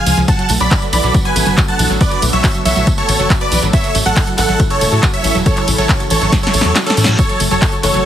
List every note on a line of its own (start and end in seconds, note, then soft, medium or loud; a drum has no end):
0.00 0.24 C#3 medium
0.00 0.25 F3 medium
0.00 0.25 G#3 medium
0.00 0.25 F4 medium
0.00 0.25 G#4 medium
0.00 0.18 F5 medium
0.00 0.18 G#5 loud
0.06 0.15 C#2 medium
0.06 0.11 F3 medium
0.06 open hi-hat loud
0.06 tambourine loud
0.17 0.25 C#2 medium
0.17 0.22 F3 loud
0.17 closed hi-hat soft
0.17 tambourine soft
0.28 3.70 D3 medium
0.28 7.15 A3 medium
0.28 3.70 B3 medium
0.28 3.70 F#4 medium
0.28 8.05 A4 medium
0.28 0.50 F#5 medium
0.28 0.50 A5 loud
0.28 kick loud
0.28 closed hi-hat medium
0.28 tambourine medium
0.39 0.44 F#3 medium
0.39 closed hi-hat soft
0.39 tambourine soft
0.49 0.58 B1 loud
0.49 0.57 A3 medium
0.49 open hi-hat loud
0.49 tambourine loud
0.60 0.68 B1 medium
0.60 0.65 F#3 loud
0.60 0.83 D5 medium
0.60 0.83 B5 loud
0.60 closed hi-hat soft
0.60 tambourine soft
0.71 0.76 F#4 loud
0.71 kick loud
0.71 clap loud
0.71 closed hi-hat medium
0.71 tambourine medium
0.82 0.87 F#3 medium
0.82 closed hi-hat soft
0.82 tambourine soft
0.93 1.01 B1 medium
0.93 0.98 E3 medium
0.93 1.15 D5 medium
0.93 1.15 B5 loud
0.93 1.15 B5 medium
0.93 clap soft
0.93 open hi-hat medium
0.93 tambourine medium
1.03 1.12 B1 medium
1.03 1.08 F#3 loud
1.03 closed hi-hat soft
1.03 tambourine soft
1.14 1.19 F#3 medium
1.14 kick loud
1.14 closed hi-hat medium
1.14 tambourine medium
1.25 1.30 F#3 medium
1.25 1.55 B4 medium
1.25 1.55 G#5 loud
1.25 closed hi-hat soft
1.25 tambourine soft
1.36 1.44 A1 loud
1.36 1.43 A3 medium
1.36 open hi-hat loud
1.36 tambourine medium
1.46 1.55 F#1 medium
1.46 1.51 F#3 loud
1.46 closed hi-hat soft
1.46 tambourine soft
1.57 1.62 F#4 loud
1.57 kick loud
1.57 clap loud
1.57 closed hi-hat medium
1.57 tambourine medium
1.68 1.73 F#3 medium
1.68 1.90 F#5 medium
1.68 1.90 A5 medium
1.68 1.90 A5 loud
1.68 closed hi-hat soft
1.68 tambourine soft
1.79 1.87 B1 medium
1.79 1.84 E3 medium
1.79 open hi-hat medium
1.79 tambourine medium
1.90 1.98 A1 medium
1.90 1.95 F#3 loud
1.90 closed hi-hat soft
1.90 tambourine soft
2.01 2.06 F#3 medium
2.01 2.23 B4 medium
2.01 2.23 D5 loud
2.01 kick loud
2.01 closed hi-hat medium
2.01 tambourine medium
2.11 2.16 F#3 medium
2.11 closed hi-hat soft
2.11 tambourine soft
2.22 2.30 B1 medium
2.22 2.29 A3 medium
2.22 open hi-hat loud
2.22 tambourine medium
2.32 2.41 B1 medium
2.32 2.38 F#3 loud
2.32 2.55 C#5 medium
2.32 2.55 E5 medium
2.32 2.55 E5 loud
2.32 closed hi-hat soft
2.32 tambourine soft
2.44 2.49 F#4 loud
2.44 kick loud
2.44 clap loud
2.44 closed hi-hat medium
2.44 tambourine medium
2.55 2.59 F#3 medium
2.55 closed hi-hat soft
2.55 tambourine soft
2.65 2.74 B1 loud
2.65 2.70 E3 medium
2.65 2.87 C#5 medium
2.65 2.87 E5 loud
2.65 2.88 E5 medium
2.65 open hi-hat medium
2.65 tambourine medium
2.76 2.84 B1 medium
2.76 2.81 F#3 loud
2.76 closed hi-hat soft
2.76 tambourine soft
2.87 2.92 F#3 medium
2.87 kick loud
2.87 closed hi-hat medium
2.87 tambourine medium
2.98 3.03 F#3 medium
2.98 3.27 A4 medium
2.98 3.27 C#5 loud
2.98 closed hi-hat soft
2.98 tambourine soft
3.09 3.17 A1 loud
3.09 3.16 A3 medium
3.09 open hi-hat loud
3.09 tambourine medium
3.19 3.28 F#1 medium
3.19 3.24 F#3 loud
3.19 closed hi-hat soft
3.19 tambourine soft
3.30 3.35 F#4 loud
3.30 kick loud
3.30 clap loud
3.30 closed hi-hat medium
3.30 tambourine medium
3.40 3.46 F#3 medium
3.40 3.63 B4 medium
3.40 3.63 D5 loud
3.40 closed hi-hat soft
3.40 tambourine soft
3.52 3.60 B1 medium
3.52 3.57 E3 medium
3.52 open hi-hat medium
3.52 tambourine medium
3.63 3.71 A1 medium
3.63 3.67 F#3 loud
3.63 closed hi-hat soft
3.63 tambourine soft
3.73 7.15 C#3 medium
3.73 7.15 E3 medium
3.73 3.78 F#3 medium
3.73 7.15 E4 medium
3.73 3.95 C#5 medium
3.73 3.95 E5 loud
3.73 kick loud
3.73 closed hi-hat medium
3.73 tambourine medium
3.84 3.89 F#3 medium
3.84 closed hi-hat soft
3.84 tambourine soft
3.95 4.03 A1 medium
3.95 4.02 A3 medium
3.95 open hi-hat loud
3.95 tambourine medium
4.06 4.14 A1 medium
4.06 4.11 F#3 loud
4.06 4.28 A4 medium
4.06 4.28 F#5 loud
4.06 closed hi-hat soft
4.06 tambourine soft
4.16 4.21 F#4 loud
4.16 kick loud
4.16 clap loud
4.16 closed hi-hat medium
4.16 tambourine medium
4.27 4.32 F#3 medium
4.27 closed hi-hat soft
4.27 tambourine soft
4.38 4.46 A1 loud
4.38 4.43 E3 medium
4.38 4.60 A4 medium
4.38 4.60 F#5 loud
4.38 clap soft
4.38 open hi-hat medium
4.38 tambourine medium
4.48 4.57 A1 medium
4.48 4.54 F#3 loud
4.48 closed hi-hat soft
4.48 tambourine soft
4.60 4.65 F#3 medium
4.60 kick loud
4.60 closed hi-hat medium
4.60 tambourine medium
4.70 4.75 F#3 medium
4.70 5.00 A4 medium
4.70 5.00 C#5 loud
4.70 closed hi-hat soft
4.70 tambourine soft
4.81 4.89 E1 loud
4.81 4.89 A3 medium
4.81 open hi-hat loud
4.81 tambourine medium
4.91 5.00 A2 medium
4.91 4.97 F#3 loud
4.91 closed hi-hat soft
4.91 tambourine soft
5.03 5.08 F#4 loud
5.03 kick loud
5.03 clap loud
5.03 closed hi-hat medium
5.03 tambourine soft
5.13 5.19 F#3 medium
5.13 5.36 C#5 medium
5.13 5.36 E5 loud
5.13 5.36 E5 medium
5.13 closed hi-hat soft
5.13 tambourine soft
5.24 5.33 A1 medium
5.24 5.29 E3 medium
5.24 open hi-hat medium
5.24 tambourine medium
5.35 5.43 E1 medium
5.35 5.40 F#3 loud
5.35 closed hi-hat soft
5.35 tambourine soft
5.46 5.51 F#3 medium
5.46 5.68 A4 medium
5.46 5.68 C#5 loud
5.46 kick loud
5.46 closed hi-hat medium
5.46 tambourine soft
5.57 5.62 F#3 medium
5.57 clap soft
5.57 closed hi-hat soft
5.57 tambourine soft
5.68 5.76 A1 loud
5.68 5.75 A3 medium
5.68 open hi-hat loud
5.68 tambourine medium
5.78 5.87 A1 medium
5.78 5.83 F#3 loud
5.78 6.00 A4 medium
5.78 6.00 C#5 loud
5.78 6.01 C#5 medium
5.78 closed hi-hat soft
5.78 tambourine soft
5.89 5.94 F#4 loud
5.89 kick loud
5.89 clap loud
5.89 closed hi-hat medium
5.89 tambourine soft
6.00 6.05 F#3 medium
6.00 closed hi-hat soft
6.00 tambourine soft
6.10 6.19 A1 loud
6.10 6.16 E3 medium
6.10 6.33 A4 medium
6.10 6.33 C#5 loud
6.10 6.33 C#5 medium
6.10 open hi-hat medium
6.10 tambourine medium
6.22 6.30 A1 medium
6.22 6.26 F#3 loud
6.22 closed hi-hat soft
6.22 tambourine soft
6.32 6.37 F#3 medium
6.32 kick loud
6.32 snare medium
6.32 closed hi-hat medium
6.32 tambourine medium
6.32 reverse cymbal medium
6.43 6.48 F#3 medium
6.43 6.73 A4 medium
6.43 6.73 C#5 loud
6.43 snare medium
6.43 closed hi-hat soft
6.43 tambourine soft
6.53 6.62 A1 loud
6.53 6.61 A3 medium
6.53 open hi-hat loud
6.53 tambourine medium
6.61 6.73 E2 medium
6.61 6.70 F#3 loud
6.61 snare medium
6.61 closed hi-hat soft
6.61 tambourine soft
6.75 6.80 F#4 loud
6.75 snare medium
6.75 clap loud
6.75 closed hi-hat medium
6.75 tambourine soft
6.86 6.91 F#3 medium
6.86 7.08 C#4 medium
6.86 7.08 A4 loud
6.86 snare loud
6.86 closed hi-hat soft
6.86 tambourine soft
6.97 7.05 A2 loud
6.97 7.02 E3 medium
6.97 open hi-hat medium
6.97 tambourine loud
7.04 7.16 A2 medium
7.04 7.13 F#3 loud
7.04 snare loud
7.04 tambourine soft
7.18 8.05 C#3 medium
7.18 7.23 F#3 medium
7.18 8.05 F#3 medium
7.18 8.05 A3 medium
7.18 8.05 F#4 medium
7.18 7.41 A4 medium
7.18 7.41 C#5 loud
7.18 kick loud
7.18 closed hi-hat medium
7.18 tambourine medium
7.29 7.34 F#3 medium
7.29 closed hi-hat soft
7.29 tambourine soft
7.40 7.48 F#1 loud
7.40 7.47 A3 medium
7.40 open hi-hat loud
7.40 tambourine medium
7.51 7.59 F#1 medium
7.51 7.56 F#3 loud
7.51 7.73 A4 medium
7.51 7.73 C#5 loud
7.51 7.73 C#5 medium
7.51 closed hi-hat soft
7.51 tambourine soft
7.62 7.67 F#4 loud
7.62 kick loud
7.62 clap loud
7.62 closed hi-hat medium
7.62 tambourine soft
7.72 7.77 F#3 medium
7.72 closed hi-hat soft
7.72 tambourine soft
7.83 7.92 F#1 loud
7.83 7.88 E3 medium
7.83 8.05 A4 medium
7.83 8.05 C#5 medium
7.83 clap soft
7.83 open hi-hat medium
7.83 tambourine loud
7.94 8.02 F#1 medium
7.94 7.99 F#3 loud
7.94 closed hi-hat soft
7.94 tambourine soft